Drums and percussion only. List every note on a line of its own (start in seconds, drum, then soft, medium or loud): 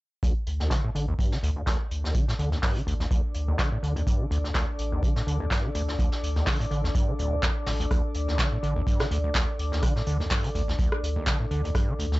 0.23 kick loud
0.23 closed hi-hat medium
0.47 closed hi-hat medium
0.60 snare soft
0.71 kick loud
0.71 snare loud
0.71 clap loud
0.71 closed hi-hat medium
0.95 closed hi-hat medium
1.19 kick loud
1.19 closed hi-hat medium
1.32 snare medium
1.43 closed hi-hat medium
1.67 kick loud
1.67 snare loud
1.67 clap loud
1.67 closed hi-hat medium
1.91 closed hi-hat medium
2.05 snare medium
2.14 kick loud
2.14 closed hi-hat medium
2.29 snare medium
2.39 closed hi-hat medium
2.52 snare soft
2.63 kick loud
2.63 snare loud
2.63 clap loud
2.63 open hi-hat medium
2.75 closed hi-hat soft
2.87 closed hi-hat medium
3.00 snare medium
3.11 kick loud
3.11 closed hi-hat medium
3.34 closed hi-hat medium
3.59 kick loud
3.59 snare loud
3.59 clap loud
3.59 closed hi-hat medium
3.83 closed hi-hat medium
3.96 closed hi-hat soft
4.07 kick loud
4.07 closed hi-hat medium
4.31 closed hi-hat medium
4.45 snare soft
4.54 kick loud
4.54 snare loud
4.54 clap loud
4.54 closed hi-hat medium
4.79 closed hi-hat medium
5.03 kick loud
5.03 closed hi-hat medium
5.16 snare soft
5.28 closed hi-hat medium
5.51 kick loud
5.51 snare loud
5.51 clap loud
5.51 closed hi-hat medium
5.75 closed hi-hat medium
5.88 snare medium
5.99 kick loud
5.99 closed hi-hat medium
6.12 snare medium
6.23 closed hi-hat medium
6.36 snare soft
6.46 kick loud
6.46 snare loud
6.46 clap loud
6.46 open hi-hat medium
6.61 closed hi-hat soft
6.71 closed hi-hat medium
6.85 snare soft
6.95 kick loud
6.95 closed hi-hat medium
7.19 closed hi-hat medium
7.43 kick loud
7.43 snare loud
7.43 clap loud
7.43 closed hi-hat medium
7.66 snare loud
7.66 open hi-hat medium
7.80 closed hi-hat soft
7.91 kick loud
7.91 cross-stick medium
7.91 closed hi-hat medium
8.14 closed hi-hat medium
8.28 snare soft
8.39 kick loud
8.39 snare loud
8.39 clap loud
8.39 closed hi-hat medium
8.63 closed hi-hat medium
8.87 kick loud
8.87 closed hi-hat medium
9.00 cross-stick medium
9.00 snare medium
9.11 closed hi-hat medium
9.34 kick loud
9.34 snare loud
9.34 clap loud
9.34 closed hi-hat medium
9.59 closed hi-hat medium
9.73 snare medium
9.82 kick loud
9.82 cross-stick medium
9.82 closed hi-hat medium
9.96 snare soft
10.06 closed hi-hat medium
10.20 snare soft
10.30 kick medium
10.30 snare loud
10.30 clap loud
10.30 open hi-hat medium
10.44 closed hi-hat soft
10.55 closed hi-hat medium
10.69 snare medium
10.79 kick loud
10.79 closed hi-hat medium
10.92 cross-stick medium
11.04 closed hi-hat medium
11.26 kick loud
11.26 snare loud
11.26 clap loud
11.26 closed hi-hat medium
11.51 closed hi-hat medium
11.65 closed hi-hat soft
11.75 kick loud
11.75 cross-stick medium
11.75 closed hi-hat medium
11.99 closed hi-hat medium
12.12 snare soft